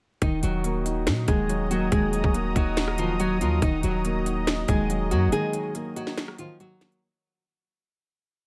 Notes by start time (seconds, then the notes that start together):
0.22 D#1 D#3 D#4 F#4 D#5 A#5 D#6, kick, closed hi-hat
0.43 D#1 F#3 F#4, closed hi-hat
0.64 A#3, closed hi-hat
0.85 D#4, closed hi-hat
1.07 A#2, finger snap, snare, closed hi-hat
1.28 D#1 D#3 G#3 G#4, kick, closed hi-hat
1.49 F#3, closed hi-hat
1.71 F#3 A#3 F#4, closed hi-hat
1.92 D#1 D#3 G#3 G#4, kick, closed hi-hat
2.13 F#3, closed hi-hat
2.24 D#1, kick
2.34 A#3, closed hi-hat
2.56 D#1 F#3 D#4 F#4, kick, closed hi-hat
2.77 finger snap, snare, closed hi-hat
2.88 cross-stick
2.98 D#3 F3 F4, closed hi-hat
3.20 F#3 F#4, closed hi-hat
3.41 D#2 F3 A#3 F4, closed hi-hat
3.62 D#1 D#3 D#4 D#5, kick, closed hi-hat
3.83 D#1 F#3 F#4, closed hi-hat
4.05 A#3, closed hi-hat
4.26 D#4, closed hi-hat
4.47 finger snap, snare, closed hi-hat
4.68 D#1 D#3 G#3 G#4, kick, closed hi-hat
4.90 F#3, closed hi-hat
5.11 F#2 F#3 A#3 F#4, closed hi-hat
5.27 D#1
5.32 D#3 G#3 G#4, closed hi-hat
5.53 F#3, closed hi-hat
5.75 A#3, closed hi-hat
5.96 F#3 D#4 F#4, closed hi-hat
6.07 snare
6.17 finger snap, snare, closed hi-hat
6.28 cross-stick
6.38 D#3 F3 F4, closed hi-hat
6.60 F#3 F#4, closed hi-hat
6.81 A#3, finger snap, snare, closed hi-hat
6.92 closed hi-hat